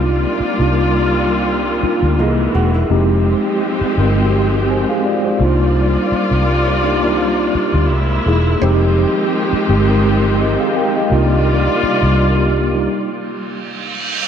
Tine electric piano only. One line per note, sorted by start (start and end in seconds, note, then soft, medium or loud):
0.00 0.40 A#3 medium
0.00 0.40 D4 medium
0.00 0.41 D#4 medium
0.00 0.41 F4 medium
0.59 1.50 A#3 medium
0.59 1.51 D4 medium
0.59 1.51 D#4 medium
0.59 1.51 F4 medium
1.83 2.18 A#3 medium
1.83 2.19 D4 medium
1.83 2.19 D#4 medium
1.83 2.20 F4 medium
2.19 2.77 A#3 medium
2.19 2.78 D#4 medium
2.19 2.78 E4 medium
2.19 2.78 G#4 medium
2.90 3.70 G#3 loud
2.90 3.70 C4 loud
2.90 3.70 D#4 loud
2.90 3.71 G4 loud
3.97 4.12 G#3 medium
3.97 4.12 C4 medium
3.97 4.12 D#4 medium
3.97 4.13 A#4 medium
4.17 5.22 G#3 medium
4.17 5.22 C4 medium
4.17 4.70 D#4 medium
4.17 4.24 F#4 medium
4.25 4.73 G4 medium
4.70 4.88 C5 medium
4.70 4.88 G#5 medium
4.89 5.05 G#4 medium
4.89 5.04 F5 medium
5.06 5.24 F4 medium
5.06 5.24 D5 medium
5.25 5.41 D#4 medium
5.25 5.58 C5 medium
5.41 6.55 A#3 medium
5.41 6.56 D4 medium
5.41 6.56 D#4 medium
5.41 6.56 F4 medium
6.83 6.97 A#3 medium
6.83 6.98 D4 medium
6.83 6.98 D#4 medium
6.83 6.98 G4 medium
7.02 7.90 A#3 medium
7.02 7.91 D4 medium
7.02 7.91 D#4 medium
7.02 7.91 F4 medium
8.26 8.53 A#3 medium
8.26 8.53 D#4 medium
8.26 8.54 E4 medium
8.26 8.54 G#4 medium
8.61 9.41 G#3 loud
8.61 9.42 C4 loud
8.61 9.42 D#4 medium
8.61 9.42 G4 loud
9.69 9.83 G#3 medium
9.69 9.83 C4 medium
9.69 9.84 D#4 medium
9.69 9.84 G4 medium
9.87 10.93 G#3 medium
9.87 10.93 C4 medium
9.87 10.94 D#4 medium
9.87 10.41 A#4 medium
10.41 10.59 G4 medium
10.41 10.59 D#5 medium
10.60 10.76 G#4 medium
10.60 10.75 F5 medium
10.77 10.95 A#4 medium
10.77 10.95 G5 medium
10.96 11.30 G4 medium
10.96 11.30 D#5 medium
11.11 12.19 A#3 medium
11.11 12.19 D4 medium
11.11 12.19 D#4 medium
11.11 12.19 F4 loud
12.20 12.38 D4 medium
12.20 12.38 A#4 medium
12.39 12.72 A#3 medium
12.39 12.72 G4 medium
12.75 13.08 G3 medium
12.75 13.08 D#4 medium